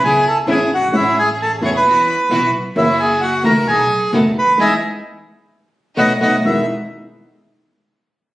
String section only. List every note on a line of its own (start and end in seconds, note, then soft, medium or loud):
0.01 0.21 B3 medium
0.01 0.21 C#4 medium
0.01 0.21 E4 medium
0.47 0.67 B3 medium
0.47 0.67 C#4 medium
0.47 0.67 E4 medium
0.93 1.58 A3 medium
0.93 1.58 C#4 medium
0.93 1.59 G#4 loud
1.62 1.81 A3 medium
1.62 1.81 C#4 medium
1.62 1.81 G#4 medium
1.85 2.04 B3 medium
1.85 2.04 E4 medium
1.85 2.04 F#4 medium
2.30 2.50 B3 medium
2.30 2.50 E4 medium
2.30 2.50 F#4 loud
2.76 3.41 A#3 medium
2.76 3.41 E4 medium
2.76 3.41 F#4 loud
3.44 3.63 A#3 medium
3.44 3.63 E4 medium
3.44 3.63 F#4 medium
3.67 3.86 B3 medium
3.67 3.86 D#4 medium
3.67 3.86 A4 medium
4.13 4.32 B3 medium
4.13 4.32 D#4 medium
4.13 4.32 A4 medium
4.59 4.73 D#4 loud
4.59 4.73 E4 medium
4.59 4.73 G#4 medium
5.97 6.12 B3 medium
5.97 6.12 D#4 loud
5.97 6.12 F#4 loud
6.21 6.35 B3 medium
6.21 6.36 D#4 medium
6.21 6.35 F#4 medium
6.44 6.63 D#4 medium
6.44 6.63 E4 medium
6.44 6.63 G#4 medium